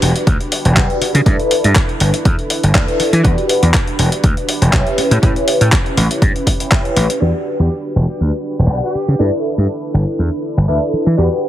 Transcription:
Already playing: D4 F#4 G4 B4
0.02 E1, open hi-hat, shaker
0.16 closed hi-hat, shaker
0.27 D2, kick, closed hi-hat
0.41 closed hi-hat, shaker
0.52 open hi-hat, shaker
0.65 E1, closed hi-hat, shaker
0.76 B1 D4 F#4 G4 B4, kick, clap, closed hi-hat
0.90 closed hi-hat, shaker
1.01 muted slap bass stroke, open hi-hat, shaker
1.15 C#3, closed hi-hat, shaker
1.26 G2 D4 E4 A4 B4, kick, closed hi-hat, shaker
1.40 closed hi-hat, shaker
1.51 open hi-hat, shaker
1.64 G2, closed hi-hat
1.75 kick, clap, closed hi-hat
1.89 closed hi-hat
2.00 G1, open hi-hat, shaker
2.14 closed hi-hat, shaker
2.25 E2, kick, closed hi-hat, shaker
2.39 closed hi-hat, shaker
2.50 open hi-hat
2.63 G1, closed hi-hat
2.74 D2 D4 E4 A4 B4, kick, clap, closed hi-hat
2.88 closed hi-hat, shaker
3.00 muted slap bass stroke, open hi-hat, shaker
3.13 E3, closed hi-hat, shaker
3.23 E2 D4 F#4 G4 B4, kick, closed hi-hat
3.38 closed hi-hat, shaker
3.49 open hi-hat, shaker
3.62 E2, closed hi-hat, shaker
3.74 kick, clap, closed hi-hat
3.87 closed hi-hat
3.99 E1, open hi-hat, shaker
4.12 closed hi-hat, shaker
4.24 D2, kick, closed hi-hat
4.37 closed hi-hat, shaker
4.48 open hi-hat, shaker
4.62 E1, closed hi-hat
4.73 C#4 E4 G4 B4, kick, clap, closed hi-hat
4.87 closed hi-hat, shaker
4.98 muted slap bass stroke, open hi-hat, shaker
5.11 A2, closed hi-hat
5.22 A2 C#4 E4 G4 B4, kick, closed hi-hat
5.36 closed hi-hat, shaker
5.48 open hi-hat, shaker
5.61 A2, closed hi-hat
5.72 kick, clap, closed hi-hat
5.86 closed hi-hat, shaker
5.97 A1, open hi-hat, shaker
6.10 closed hi-hat, shaker
6.22 G2, kick, closed hi-hat
6.35 closed hi-hat, shaker
6.47 kick, open hi-hat
6.60 closed hi-hat
6.71 C#4 E4 G4 B4, kick, clap, closed hi-hat
6.85 closed hi-hat, shaker
6.96 A1, open hi-hat, shaker
7.10 closed hi-hat
7.20 E2 D4 F#4 G4 B4
7.59 E2 G4
7.96 E1
8.21 D2
8.59 E1
8.70 B1 D4 G4 B4 F#5
8.84 G4
8.95 muted slap bass stroke
9.08 C#3
9.19 G2 D4 E4 A4 B4
9.58 G2
9.94 G1
10.19 E2
10.57 G1
10.68 D2 D4 E4 A4 B4
10.93 muted slap bass stroke
11.06 E3
11.17 E2 D4 F#4 G4 B4

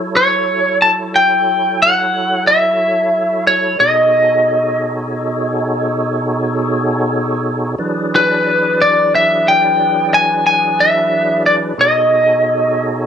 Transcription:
Already playing: F#3 E4 A4 C#5
0.17 C#5
0.82 A5
1.16 G5
1.82 F#5
2.47 E5
3.47 C#5
3.79 B2 D#4 F#4 G#4 A4 C#5 D#5
7.78 E3 F#3 D4 G#4 B4 D5
8.16 B4
8.82 D5
9.15 E5
9.48 G5
10.14 G#5
10.47 G#5
10.80 E5
11.46 D5
11.78 B2 D#4 F#4 G#4 A4 C#5 D#5

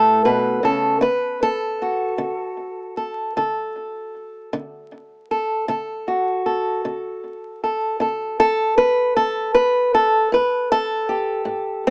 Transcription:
Already playing: A2 A3 G4 A4
0.25 B2 B4
0.63 C#3 A4
1.01 D3 B4
1.43 A4
1.82 F#4
2.18 D3
2.97 A4
3.37 D3 A4
4.53 D3
5.31 A4
5.68 D3 A4
6.08 F#4
6.46 A4
6.85 D3
7.64 A4
8.00 D3 A4
8.40 A4
8.78 B4
9.16 D3 A4
9.54 B4
9.95 A4
10.32 A2 B4
10.72 A4
11.09 G4
11.45 A2
11.87 C4

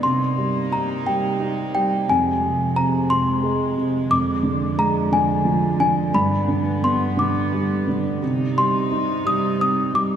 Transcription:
0.02 C3 A#3 D#4 C6
0.37 G3
0.72 G4 A#5
1.07 G3 G5
1.40 D#4
1.75 G3 G5
2.09 F2 G#3 G#5
2.44 C3
2.76 C4 A#5
3.10 C3 C6
3.43 G#3
3.77 C3
4.10 F2 D3 D6
4.43 D3
4.78 G#3 A#5
5.11 D3 G#5
5.45 F3
5.80 D3 G#5
6.13 G2 B3 B5
6.48 D3
6.83 B3 C6
7.17 D3 D6
7.52 G3
7.87 D3
8.22 C3 G3 D#4
8.57 G3 C6
8.91 D#4
9.25 G3 D#6
9.59 C4 D#6
9.93 G3 D6

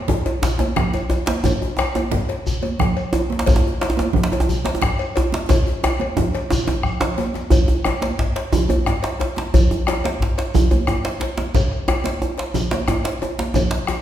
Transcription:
0.08 bombo rim, bombo low, djembe tone, low conga
0.26 cowbell, djembe slap, djembe tone
0.42 djembe slap, djembe bass, shekere
0.59 cowbell, djembe tone, high conga
0.76 bombo rim, bombo low, djembe slap, high conga, low conga
0.93 cowbell, djembe slap, djembe tone, shekere
1.10 bombo rim, cowbell, djembe slap, djembe tone, shekere
1.26 djembe slap, high conga
1.44 bombo low, cowbell, djembe tone, djembe bass, low conga, shekere
1.62 djembe tone
1.77 bombo rim, cowbell, djembe slap, djembe tone, high conga, shekere
1.95 cowbell, djembe tone, high conga
2.12 bombo rim, bombo low, djembe tone, low conga
2.29 cowbell, djembe slap
2.47 djembe bass, shekere
2.63 cowbell, high conga, djembe tone
2.80 bombo rim, bombo low, djembe slap, high conga, low conga
2.97 cowbell, djembe slap, shekere
3.13 bombo rim, cowbell, djembe slap, djembe tone, shekere
3.16 djembe tone
3.30 djembe slap, high conga
3.39 djembe slap
3.46 bombo low, cowbell, djembe tone, low conga, djembe bass, shekere
3.56 djembe tone
3.67 djembe tone
3.81 cowbell, djembe slap, high conga, shekere
3.90 djembe tone
3.97 cowbell, high conga, djembe tone
4.13 bombo rim, bombo low, djembe tone, low conga
4.24 djembe slap
4.32 cowbell, djembe slap, djembe tone
4.40 djembe tone
4.49 djembe bass, shekere
4.65 cowbell, djembe slap, high conga, djembe tone
4.75 djembe tone
4.82 bombo rim, bombo low, djembe slap, high conga, low conga
4.99 cowbell, djembe slap, shekere
5.16 bombo rim, cowbell, djembe slap, djembe tone, shekere
5.32 djembe slap, high conga
5.49 bombo rim, bombo low, cowbell, djembe tone, low conga, djembe bass, shekere
5.67 djembe tone
5.84 bombo rim, cowbell, djembe slap, djembe tone
6.00 bombo rim, cowbell, high conga
6.17 bombo rim, bombo low, djembe tone, high conga, low conga
6.34 cowbell, djembe slap, high conga, shekere
6.50 bombo rim, djembe tone, djembe bass, shekere
6.67 bombo rim, cowbell, djembe tone, low conga
6.83 bombo rim, bombo low, low conga, shekere
7.01 cowbell, djembe slap, low conga
7.18 bombo rim, cowbell, high conga, djembe tone, shekere
7.34 bombo rim, djembe slap, high conga, shekere
7.50 bombo low, cowbell, djembe slap, djembe bass, low conga, shekere
7.68 bombo rim, djembe bass
7.85 bombo rim, cowbell, djembe slap, djembe tone, high conga
8.02 cowbell, djembe slap, high conga
8.19 bombo rim, bombo low, djembe slap
8.36 bombo rim, cowbell, djembe slap
8.53 high conga, djembe tone, djembe bass, low conga, shekere
8.69 bombo rim, cowbell, djembe slap, high conga, djembe bass
8.86 bombo rim, bombo low, djembe slap, djembe tone
9.03 cowbell, djembe slap, high conga
9.20 cowbell, djembe slap, djembe tone
9.36 djembe slap, high conga
9.38 djembe slap
9.54 bombo low, cowbell, djembe slap, djembe bass, low conga, shekere
9.71 bombo rim, djembe bass
9.87 bombo rim, cowbell, djembe slap, djembe tone, high conga
10.04 cowbell, djembe slap, high conga
10.20 bombo rim, bombo low, djembe slap
10.38 bombo rim, cowbell, djembe slap
10.54 high conga, djembe tone, low conga, djembe bass, shekere
10.71 bombo rim, cowbell, djembe slap, high conga, djembe bass
10.87 bombo rim, bombo low, djembe slap, djembe tone
11.05 cowbell, djembe slap, high conga
11.20 cowbell, djembe slap, djembe tone
11.37 djembe slap, high conga
11.54 bombo low, cowbell, djembe slap, djembe bass, low conga, shekere
11.72 bombo rim
11.88 bombo rim, cowbell, djembe slap, djembe tone, high conga
12.04 cowbell, djembe slap, high conga
12.22 djembe slap, djembe tone
12.38 bombo rim, cowbell, djembe slap
12.39 djembe slap
12.54 high conga, djembe tone, low conga, djembe bass, shekere
12.71 bombo rim, cowbell, djembe slap, high conga
12.88 bombo rim, bombo low, djembe slap, djembe tone
13.04 cowbell, djembe slap, high conga
13.22 cowbell, djembe tone
13.39 djembe slap, high conga
13.54 bombo low, cowbell, djembe tone, djembe bass, low conga, shekere
13.71 bombo rim, djembe slap
13.87 bombo rim, djembe slap, djembe tone, shekere

